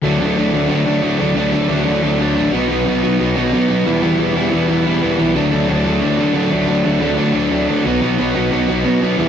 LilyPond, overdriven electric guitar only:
\new Staff \with { instrumentName = "Overdriven electric guitar" } { \clef bass \time 4/4 \key d \mixolydian \tempo 4 = 180 <d fis a d'>8 <d fis a d'>8 <d fis a d'>8 <d fis a d'>8 <d fis a d'>8 <d fis a d'>8 <d fis a d'>8 <d fis a d'>8 | <d fis a d'>8 <d fis a d'>8 <d fis a d'>8 <d fis a d'>8 <d fis a d'>8 <d fis a d'>8 <d fis a d'>8 <b, fis b dis'>8 | <b, fis b dis'>8 <b, fis b dis'>8 <b, fis b dis'>8 <b, fis b dis'>8 <b, fis b dis'>8 <b, fis b dis'>8 <b, fis b dis'>8 <e g b e'>8 | <e g b e'>8 <e g b e'>8 <e g b e'>8 <e g b e'>8 <e g b e'>8 <e g b e'>8 <e g b e'>8 <e g b e'>8 |
<d fis a d'>8 <d fis a d'>8 <d fis a d'>8 <d fis a d'>8 <d fis a d'>8 <d fis a d'>8 <d fis a d'>8 <d fis a d'>8 | <d fis a d'>8 <d fis a d'>8 <d fis a d'>8 <d fis a d'>8 <d fis a d'>8 <d fis a d'>8 <d fis a d'>8 <b, fis b dis'>8 | <b, fis b dis'>8 <b, fis b dis'>8 <b, fis b dis'>8 <b, fis b dis'>8 <b, fis b dis'>8 <b, fis b dis'>8 <b, fis b dis'>8 <e g b e'>8 | }